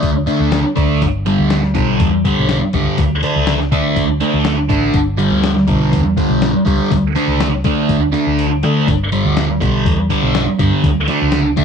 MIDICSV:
0, 0, Header, 1, 4, 480
1, 0, Start_track
1, 0, Tempo, 490998
1, 990, Time_signature, 4, 2, 24, 8
1, 11385, End_track
2, 0, Start_track
2, 0, Title_t, "Distorted electric guitar"
2, 0, Program_c, 0, 30
2, 0, Note_on_c, 0, 50, 69
2, 0, Note_on_c, 0, 57, 74
2, 100, Note_off_c, 0, 57, 0
2, 103, Note_off_c, 0, 50, 0
2, 262, Note_on_c, 0, 62, 95
2, 264, Note_on_c, 0, 57, 90
2, 272, Note_on_c, 0, 50, 73
2, 578, Note_off_c, 0, 62, 0
2, 579, Note_off_c, 0, 57, 0
2, 583, Note_off_c, 0, 50, 0
2, 739, Note_on_c, 0, 62, 78
2, 742, Note_on_c, 0, 57, 70
2, 745, Note_on_c, 0, 50, 65
2, 985, Note_off_c, 0, 62, 0
2, 986, Note_off_c, 0, 57, 0
2, 988, Note_off_c, 0, 50, 0
2, 1234, Note_on_c, 0, 55, 97
2, 1236, Note_on_c, 0, 50, 80
2, 1245, Note_on_c, 0, 43, 71
2, 1545, Note_off_c, 0, 55, 0
2, 1546, Note_off_c, 0, 50, 0
2, 1551, Note_off_c, 0, 43, 0
2, 1708, Note_on_c, 0, 55, 80
2, 1710, Note_on_c, 0, 50, 75
2, 1713, Note_on_c, 0, 43, 68
2, 2023, Note_off_c, 0, 55, 0
2, 2024, Note_off_c, 0, 50, 0
2, 2025, Note_off_c, 0, 43, 0
2, 2198, Note_on_c, 0, 55, 94
2, 2207, Note_on_c, 0, 43, 76
2, 2207, Note_on_c, 0, 50, 85
2, 2509, Note_off_c, 0, 55, 0
2, 2513, Note_off_c, 0, 43, 0
2, 2513, Note_off_c, 0, 50, 0
2, 2678, Note_on_c, 0, 50, 76
2, 2680, Note_on_c, 0, 55, 85
2, 2688, Note_on_c, 0, 43, 64
2, 2916, Note_off_c, 0, 50, 0
2, 2918, Note_off_c, 0, 55, 0
2, 2922, Note_off_c, 0, 43, 0
2, 3157, Note_on_c, 0, 62, 101
2, 3164, Note_on_c, 0, 57, 83
2, 3172, Note_on_c, 0, 50, 81
2, 3469, Note_off_c, 0, 62, 0
2, 3472, Note_off_c, 0, 57, 0
2, 3476, Note_off_c, 0, 50, 0
2, 3637, Note_on_c, 0, 62, 80
2, 3640, Note_on_c, 0, 57, 77
2, 3645, Note_on_c, 0, 50, 66
2, 3949, Note_off_c, 0, 62, 0
2, 3950, Note_off_c, 0, 57, 0
2, 3953, Note_off_c, 0, 50, 0
2, 4115, Note_on_c, 0, 62, 106
2, 4123, Note_on_c, 0, 57, 85
2, 4124, Note_on_c, 0, 50, 87
2, 4427, Note_off_c, 0, 62, 0
2, 4432, Note_off_c, 0, 50, 0
2, 4432, Note_off_c, 0, 57, 0
2, 4590, Note_on_c, 0, 62, 89
2, 4597, Note_on_c, 0, 50, 65
2, 4597, Note_on_c, 0, 57, 73
2, 4833, Note_off_c, 0, 62, 0
2, 4836, Note_off_c, 0, 57, 0
2, 4837, Note_off_c, 0, 50, 0
2, 5061, Note_on_c, 0, 55, 101
2, 5062, Note_on_c, 0, 50, 82
2, 5067, Note_on_c, 0, 43, 82
2, 5381, Note_off_c, 0, 50, 0
2, 5381, Note_off_c, 0, 55, 0
2, 5384, Note_off_c, 0, 43, 0
2, 5548, Note_on_c, 0, 55, 74
2, 5552, Note_on_c, 0, 50, 67
2, 5554, Note_on_c, 0, 43, 62
2, 5864, Note_off_c, 0, 55, 0
2, 5866, Note_off_c, 0, 50, 0
2, 5867, Note_off_c, 0, 43, 0
2, 6034, Note_on_c, 0, 55, 102
2, 6036, Note_on_c, 0, 50, 86
2, 6044, Note_on_c, 0, 43, 83
2, 6347, Note_off_c, 0, 55, 0
2, 6348, Note_off_c, 0, 50, 0
2, 6352, Note_off_c, 0, 43, 0
2, 6504, Note_on_c, 0, 55, 87
2, 6508, Note_on_c, 0, 50, 71
2, 6517, Note_on_c, 0, 43, 62
2, 6749, Note_off_c, 0, 55, 0
2, 6751, Note_off_c, 0, 50, 0
2, 6756, Note_off_c, 0, 43, 0
2, 6996, Note_on_c, 0, 62, 96
2, 7001, Note_on_c, 0, 57, 90
2, 7012, Note_on_c, 0, 50, 75
2, 7307, Note_off_c, 0, 62, 0
2, 7310, Note_off_c, 0, 57, 0
2, 7315, Note_off_c, 0, 50, 0
2, 7478, Note_on_c, 0, 62, 86
2, 7483, Note_on_c, 0, 57, 74
2, 7491, Note_on_c, 0, 50, 74
2, 7788, Note_off_c, 0, 62, 0
2, 7790, Note_off_c, 0, 57, 0
2, 7794, Note_off_c, 0, 50, 0
2, 7942, Note_on_c, 0, 62, 89
2, 7951, Note_on_c, 0, 57, 90
2, 7961, Note_on_c, 0, 50, 83
2, 8259, Note_off_c, 0, 62, 0
2, 8264, Note_off_c, 0, 57, 0
2, 8269, Note_off_c, 0, 50, 0
2, 8438, Note_on_c, 0, 62, 76
2, 8439, Note_on_c, 0, 50, 64
2, 8442, Note_on_c, 0, 57, 73
2, 8675, Note_off_c, 0, 62, 0
2, 8676, Note_off_c, 0, 50, 0
2, 8677, Note_off_c, 0, 57, 0
2, 8917, Note_on_c, 0, 55, 91
2, 8925, Note_on_c, 0, 50, 92
2, 8926, Note_on_c, 0, 43, 75
2, 9226, Note_off_c, 0, 55, 0
2, 9230, Note_off_c, 0, 50, 0
2, 9231, Note_off_c, 0, 43, 0
2, 9393, Note_on_c, 0, 55, 79
2, 9401, Note_on_c, 0, 50, 77
2, 9403, Note_on_c, 0, 43, 68
2, 9704, Note_off_c, 0, 55, 0
2, 9708, Note_off_c, 0, 50, 0
2, 9709, Note_off_c, 0, 43, 0
2, 9877, Note_on_c, 0, 55, 92
2, 9878, Note_on_c, 0, 50, 80
2, 9885, Note_on_c, 0, 43, 83
2, 10186, Note_off_c, 0, 55, 0
2, 10187, Note_off_c, 0, 50, 0
2, 10190, Note_off_c, 0, 43, 0
2, 10354, Note_on_c, 0, 50, 79
2, 10357, Note_on_c, 0, 55, 76
2, 10364, Note_on_c, 0, 43, 67
2, 10593, Note_off_c, 0, 50, 0
2, 10594, Note_off_c, 0, 55, 0
2, 10597, Note_off_c, 0, 43, 0
2, 10829, Note_on_c, 0, 62, 92
2, 10840, Note_on_c, 0, 57, 86
2, 10842, Note_on_c, 0, 50, 83
2, 11142, Note_off_c, 0, 62, 0
2, 11147, Note_off_c, 0, 57, 0
2, 11149, Note_off_c, 0, 50, 0
2, 11309, Note_on_c, 0, 57, 72
2, 11310, Note_on_c, 0, 62, 79
2, 11315, Note_on_c, 0, 50, 68
2, 11385, Note_off_c, 0, 50, 0
2, 11385, Note_off_c, 0, 57, 0
2, 11385, Note_off_c, 0, 62, 0
2, 11385, End_track
3, 0, Start_track
3, 0, Title_t, "Fingered electric bass"
3, 0, Program_c, 1, 33
3, 30, Note_on_c, 1, 38, 96
3, 257, Note_off_c, 1, 38, 0
3, 391, Note_on_c, 1, 38, 87
3, 618, Note_off_c, 1, 38, 0
3, 755, Note_on_c, 1, 38, 82
3, 980, Note_off_c, 1, 38, 0
3, 994, Note_on_c, 1, 31, 96
3, 1334, Note_off_c, 1, 31, 0
3, 1358, Note_on_c, 1, 38, 94
3, 1697, Note_off_c, 1, 38, 0
3, 1717, Note_on_c, 1, 35, 99
3, 1942, Note_off_c, 1, 35, 0
3, 1956, Note_on_c, 1, 40, 88
3, 2182, Note_off_c, 1, 40, 0
3, 2330, Note_on_c, 1, 35, 99
3, 2550, Note_off_c, 1, 35, 0
3, 2679, Note_on_c, 1, 37, 94
3, 2790, Note_off_c, 1, 37, 0
3, 2912, Note_on_c, 1, 38, 113
3, 3141, Note_off_c, 1, 38, 0
3, 3284, Note_on_c, 1, 37, 87
3, 3621, Note_off_c, 1, 37, 0
3, 3635, Note_on_c, 1, 50, 93
3, 3863, Note_off_c, 1, 50, 0
3, 3877, Note_on_c, 1, 38, 99
3, 4104, Note_off_c, 1, 38, 0
3, 4239, Note_on_c, 1, 38, 94
3, 4595, Note_on_c, 1, 33, 87
3, 4609, Note_off_c, 1, 38, 0
3, 4823, Note_off_c, 1, 33, 0
3, 4834, Note_on_c, 1, 31, 102
3, 5176, Note_off_c, 1, 31, 0
3, 5194, Note_on_c, 1, 38, 94
3, 5536, Note_off_c, 1, 38, 0
3, 5553, Note_on_c, 1, 35, 96
3, 5782, Note_off_c, 1, 35, 0
3, 5798, Note_on_c, 1, 40, 88
3, 6024, Note_off_c, 1, 40, 0
3, 6155, Note_on_c, 1, 35, 106
3, 6382, Note_off_c, 1, 35, 0
3, 6516, Note_on_c, 1, 37, 96
3, 6629, Note_off_c, 1, 37, 0
3, 6762, Note_on_c, 1, 38, 108
3, 6986, Note_off_c, 1, 38, 0
3, 7113, Note_on_c, 1, 37, 86
3, 7454, Note_off_c, 1, 37, 0
3, 7474, Note_on_c, 1, 50, 88
3, 7701, Note_off_c, 1, 50, 0
3, 7719, Note_on_c, 1, 38, 99
3, 7944, Note_off_c, 1, 38, 0
3, 8083, Note_on_c, 1, 38, 89
3, 8445, Note_off_c, 1, 38, 0
3, 8445, Note_on_c, 1, 50, 84
3, 8666, Note_off_c, 1, 50, 0
3, 8677, Note_on_c, 1, 31, 97
3, 9015, Note_off_c, 1, 31, 0
3, 9043, Note_on_c, 1, 38, 95
3, 9378, Note_off_c, 1, 38, 0
3, 9398, Note_on_c, 1, 35, 105
3, 9622, Note_off_c, 1, 35, 0
3, 9637, Note_on_c, 1, 40, 87
3, 9861, Note_off_c, 1, 40, 0
3, 9998, Note_on_c, 1, 35, 102
3, 10222, Note_off_c, 1, 35, 0
3, 10362, Note_on_c, 1, 43, 87
3, 10471, Note_off_c, 1, 43, 0
3, 10594, Note_on_c, 1, 38, 107
3, 10819, Note_off_c, 1, 38, 0
3, 10966, Note_on_c, 1, 37, 88
3, 11300, Note_off_c, 1, 37, 0
3, 11312, Note_on_c, 1, 50, 87
3, 11385, Note_off_c, 1, 50, 0
3, 11385, End_track
4, 0, Start_track
4, 0, Title_t, "Drums"
4, 27, Note_on_c, 9, 46, 72
4, 29, Note_on_c, 9, 36, 112
4, 125, Note_off_c, 9, 46, 0
4, 126, Note_off_c, 9, 36, 0
4, 267, Note_on_c, 9, 46, 51
4, 365, Note_off_c, 9, 46, 0
4, 507, Note_on_c, 9, 46, 73
4, 509, Note_on_c, 9, 38, 111
4, 605, Note_off_c, 9, 46, 0
4, 607, Note_off_c, 9, 38, 0
4, 751, Note_on_c, 9, 46, 51
4, 753, Note_on_c, 9, 36, 84
4, 849, Note_off_c, 9, 46, 0
4, 850, Note_off_c, 9, 36, 0
4, 995, Note_on_c, 9, 36, 101
4, 995, Note_on_c, 9, 46, 72
4, 1093, Note_off_c, 9, 36, 0
4, 1093, Note_off_c, 9, 46, 0
4, 1232, Note_on_c, 9, 46, 56
4, 1329, Note_off_c, 9, 46, 0
4, 1469, Note_on_c, 9, 46, 76
4, 1471, Note_on_c, 9, 38, 106
4, 1567, Note_off_c, 9, 46, 0
4, 1569, Note_off_c, 9, 38, 0
4, 1590, Note_on_c, 9, 38, 31
4, 1688, Note_off_c, 9, 38, 0
4, 1709, Note_on_c, 9, 46, 59
4, 1715, Note_on_c, 9, 36, 88
4, 1807, Note_off_c, 9, 46, 0
4, 1813, Note_off_c, 9, 36, 0
4, 1954, Note_on_c, 9, 46, 80
4, 1956, Note_on_c, 9, 36, 117
4, 2052, Note_off_c, 9, 46, 0
4, 2053, Note_off_c, 9, 36, 0
4, 2197, Note_on_c, 9, 36, 76
4, 2200, Note_on_c, 9, 46, 57
4, 2295, Note_off_c, 9, 36, 0
4, 2298, Note_off_c, 9, 46, 0
4, 2433, Note_on_c, 9, 46, 75
4, 2435, Note_on_c, 9, 38, 108
4, 2530, Note_off_c, 9, 46, 0
4, 2532, Note_off_c, 9, 38, 0
4, 2669, Note_on_c, 9, 46, 55
4, 2675, Note_on_c, 9, 36, 84
4, 2767, Note_off_c, 9, 46, 0
4, 2773, Note_off_c, 9, 36, 0
4, 2912, Note_on_c, 9, 46, 81
4, 2915, Note_on_c, 9, 36, 112
4, 3010, Note_off_c, 9, 46, 0
4, 3013, Note_off_c, 9, 36, 0
4, 3155, Note_on_c, 9, 46, 54
4, 3253, Note_off_c, 9, 46, 0
4, 3391, Note_on_c, 9, 46, 73
4, 3392, Note_on_c, 9, 38, 104
4, 3488, Note_off_c, 9, 46, 0
4, 3490, Note_off_c, 9, 38, 0
4, 3521, Note_on_c, 9, 38, 31
4, 3619, Note_off_c, 9, 38, 0
4, 3635, Note_on_c, 9, 36, 86
4, 3639, Note_on_c, 9, 46, 56
4, 3733, Note_off_c, 9, 36, 0
4, 3737, Note_off_c, 9, 46, 0
4, 3873, Note_on_c, 9, 36, 116
4, 3876, Note_on_c, 9, 46, 76
4, 3971, Note_off_c, 9, 36, 0
4, 3973, Note_off_c, 9, 46, 0
4, 4111, Note_on_c, 9, 46, 54
4, 4209, Note_off_c, 9, 46, 0
4, 4347, Note_on_c, 9, 46, 75
4, 4349, Note_on_c, 9, 38, 107
4, 4444, Note_off_c, 9, 46, 0
4, 4446, Note_off_c, 9, 38, 0
4, 4591, Note_on_c, 9, 36, 87
4, 4594, Note_on_c, 9, 46, 56
4, 4689, Note_off_c, 9, 36, 0
4, 4692, Note_off_c, 9, 46, 0
4, 4826, Note_on_c, 9, 46, 69
4, 4831, Note_on_c, 9, 36, 107
4, 4924, Note_off_c, 9, 46, 0
4, 4929, Note_off_c, 9, 36, 0
4, 5073, Note_on_c, 9, 46, 58
4, 5171, Note_off_c, 9, 46, 0
4, 5313, Note_on_c, 9, 46, 76
4, 5315, Note_on_c, 9, 38, 110
4, 5411, Note_off_c, 9, 46, 0
4, 5413, Note_off_c, 9, 38, 0
4, 5442, Note_on_c, 9, 38, 34
4, 5540, Note_off_c, 9, 38, 0
4, 5549, Note_on_c, 9, 46, 57
4, 5551, Note_on_c, 9, 36, 91
4, 5647, Note_off_c, 9, 46, 0
4, 5649, Note_off_c, 9, 36, 0
4, 5793, Note_on_c, 9, 36, 114
4, 5796, Note_on_c, 9, 46, 85
4, 5891, Note_off_c, 9, 36, 0
4, 5894, Note_off_c, 9, 46, 0
4, 6033, Note_on_c, 9, 36, 78
4, 6039, Note_on_c, 9, 46, 55
4, 6131, Note_off_c, 9, 36, 0
4, 6136, Note_off_c, 9, 46, 0
4, 6275, Note_on_c, 9, 46, 81
4, 6276, Note_on_c, 9, 38, 107
4, 6372, Note_off_c, 9, 46, 0
4, 6374, Note_off_c, 9, 38, 0
4, 6515, Note_on_c, 9, 36, 79
4, 6519, Note_on_c, 9, 46, 62
4, 6613, Note_off_c, 9, 36, 0
4, 6617, Note_off_c, 9, 46, 0
4, 6755, Note_on_c, 9, 36, 107
4, 6761, Note_on_c, 9, 46, 78
4, 6853, Note_off_c, 9, 36, 0
4, 6859, Note_off_c, 9, 46, 0
4, 7002, Note_on_c, 9, 46, 57
4, 7099, Note_off_c, 9, 46, 0
4, 7238, Note_on_c, 9, 46, 84
4, 7240, Note_on_c, 9, 38, 113
4, 7336, Note_off_c, 9, 46, 0
4, 7338, Note_off_c, 9, 38, 0
4, 7471, Note_on_c, 9, 46, 62
4, 7474, Note_on_c, 9, 36, 91
4, 7569, Note_off_c, 9, 46, 0
4, 7571, Note_off_c, 9, 36, 0
4, 7715, Note_on_c, 9, 36, 113
4, 7716, Note_on_c, 9, 46, 81
4, 7813, Note_off_c, 9, 36, 0
4, 7814, Note_off_c, 9, 46, 0
4, 7957, Note_on_c, 9, 46, 54
4, 8054, Note_off_c, 9, 46, 0
4, 8199, Note_on_c, 9, 46, 70
4, 8297, Note_off_c, 9, 46, 0
4, 8435, Note_on_c, 9, 46, 52
4, 8533, Note_off_c, 9, 46, 0
4, 8676, Note_on_c, 9, 36, 107
4, 8681, Note_on_c, 9, 46, 67
4, 8774, Note_off_c, 9, 36, 0
4, 8779, Note_off_c, 9, 46, 0
4, 8917, Note_on_c, 9, 46, 55
4, 9015, Note_off_c, 9, 46, 0
4, 9157, Note_on_c, 9, 46, 74
4, 9159, Note_on_c, 9, 38, 107
4, 9255, Note_off_c, 9, 46, 0
4, 9257, Note_off_c, 9, 38, 0
4, 9396, Note_on_c, 9, 36, 90
4, 9403, Note_on_c, 9, 46, 58
4, 9494, Note_off_c, 9, 36, 0
4, 9501, Note_off_c, 9, 46, 0
4, 9635, Note_on_c, 9, 36, 117
4, 9641, Note_on_c, 9, 46, 80
4, 9733, Note_off_c, 9, 36, 0
4, 9739, Note_off_c, 9, 46, 0
4, 9875, Note_on_c, 9, 36, 73
4, 9878, Note_on_c, 9, 46, 58
4, 9973, Note_off_c, 9, 36, 0
4, 9976, Note_off_c, 9, 46, 0
4, 10116, Note_on_c, 9, 46, 79
4, 10117, Note_on_c, 9, 38, 117
4, 10213, Note_off_c, 9, 46, 0
4, 10215, Note_off_c, 9, 38, 0
4, 10355, Note_on_c, 9, 36, 88
4, 10356, Note_on_c, 9, 46, 62
4, 10453, Note_off_c, 9, 36, 0
4, 10454, Note_off_c, 9, 46, 0
4, 10595, Note_on_c, 9, 36, 105
4, 10597, Note_on_c, 9, 46, 77
4, 10693, Note_off_c, 9, 36, 0
4, 10695, Note_off_c, 9, 46, 0
4, 10830, Note_on_c, 9, 46, 59
4, 10928, Note_off_c, 9, 46, 0
4, 11065, Note_on_c, 9, 46, 85
4, 11067, Note_on_c, 9, 38, 112
4, 11162, Note_off_c, 9, 46, 0
4, 11164, Note_off_c, 9, 38, 0
4, 11309, Note_on_c, 9, 36, 85
4, 11311, Note_on_c, 9, 46, 65
4, 11385, Note_off_c, 9, 36, 0
4, 11385, Note_off_c, 9, 46, 0
4, 11385, End_track
0, 0, End_of_file